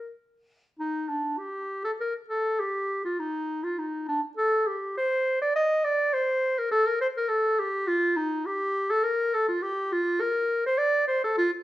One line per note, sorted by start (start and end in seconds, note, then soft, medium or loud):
0.00 0.11 A#4 soft
0.79 1.10 D#4 medium
1.09 1.40 D4 medium
1.38 1.83 G4 medium
1.85 1.91 A4 medium
2.01 2.14 A#4 medium
2.29 2.61 A4 medium
2.60 3.03 G4 medium
3.05 3.21 F4 medium
3.19 3.65 D#4 medium
3.63 3.80 F4 medium
3.79 4.07 D#4 medium
4.08 4.21 D4 medium
4.37 4.69 A4 medium
4.67 4.97 G4 medium
4.97 5.41 C5 medium
5.42 5.55 D5 medium
5.56 5.86 D#5 medium
5.84 6.15 D5 medium
6.14 6.60 C5 medium
6.59 6.71 A#4 medium
6.71 6.88 A4 medium
6.87 7.00 A#4 medium
7.01 7.07 C5 medium
7.17 7.30 A#4 medium
7.29 7.61 A4 medium
7.59 7.89 G4 medium
7.88 8.18 F4 loud
8.16 8.47 D#4 medium
8.46 8.92 G4 medium
8.90 9.05 A4 medium
9.04 9.35 A#4 medium
9.34 9.47 A4 medium
9.48 9.64 F4 medium
9.62 9.94 G4 medium
9.92 10.22 F4 medium
10.21 10.65 A#4 medium
10.66 10.80 C5 medium
10.78 11.07 D5 medium
11.08 11.22 C5 medium
11.24 11.37 A4 medium
11.38 11.51 F4 medium